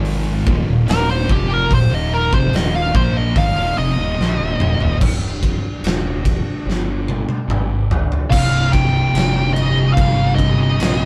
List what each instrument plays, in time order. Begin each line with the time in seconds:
Already playing: fingered electric bass G#1, distorted electric guitar G#2 D#3 G#3, string machine D#3 A#3 F4
0.05 open hi-hat
0.46 fingered electric bass D#1, distorted electric guitar D#2 A#2, kick
0.67 fingered electric bass D#1, distorted electric guitar D#2 A#2
0.87 fingered electric bass D#1, distorted electric guitar D#2 A#2 D#3, lead electric guitar A#4, snare, open hi-hat
1.11 lead electric guitar C5
1.29 fingered electric bass F1, distorted electric guitar F2 C3 F3, lead electric guitar G4, kick
1.54 lead electric guitar A#4
1.70 fingered electric bass D#1, distorted electric guitar D#2 A#2, string machine D#4, kick, open hi-hat
1.74 lead electric guitar C5
1.91 fingered electric bass D#1, distorted electric guitar D#2 A#2 D#3, lead electric guitar D#5
2.13 lead electric guitar A#4
2.32 fingered electric bass F1, distorted electric guitar F2 C3, lead electric guitar C5, kick
2.52 fingered electric bass D#1, distorted electric guitar D#2 A#2 D#3, lead electric guitar D#5, snare, open hi-hat
2.76 lead electric guitar F5
2.94 fingered electric bass A#1, distorted electric guitar A#2 F3 A#3, lead electric guitar C5, kick
3.17 lead electric guitar D#5
3.36 fingered electric bass G#1, distorted electric guitar G#2 D#3, lead electric guitar F5, kick, open hi-hat
3.55 fingered electric bass D#1, distorted electric guitar D#2 A#2
3.76 fingered electric bass F1, distorted electric guitar F2 C3, lead electric guitar D#5
3.97 fingered electric bass D#1, distorted electric guitar D#2 A#2
4.19 fingered electric bass A#1, distorted electric guitar A#2 F3, snare
4.39 fingered electric bass D#1, distorted electric guitar D#2 A#2
4.59 fingered electric bass D#1, distorted electric guitar D#2 A#2, mid tom
4.80 fingered electric bass D#1, distorted electric guitar D#2 A#2, floor tom
5.01 fingered electric bass C1, string machine C3 G3 D4, kick, crash
5.43 kick, ride
5.83 fingered electric bass D#1, snare, ride
6.25 kick, ride
6.66 fingered electric bass G1
6.70 snare
7.08 high tom
7.29 high tom
7.48 fingered electric bass G#1, mid tom
7.91 floor tom
8.12 floor tom
8.29 fingered electric bass C1, distorted electric guitar C2 G2 C3, string machine C3 D3 G3, lead electric guitar F5, kick, crash
8.72 lead electric guitar G5, kick, crash
9.13 fingered electric bass F1, crash
9.18 snare
9.53 lead electric guitar D#5, crash
9.93 fingered electric bass G1, distorted electric guitar C2 G2, lead electric guitar F5, kick
9.98 distorted electric guitar C3, crash
10.35 distorted electric guitar G2 C3, lead electric guitar D#5, kick, crash
10.41 distorted electric guitar C2
10.78 fingered electric bass A#1, distorted electric guitar C2 G2, crash
10.82 distorted electric guitar C3, snare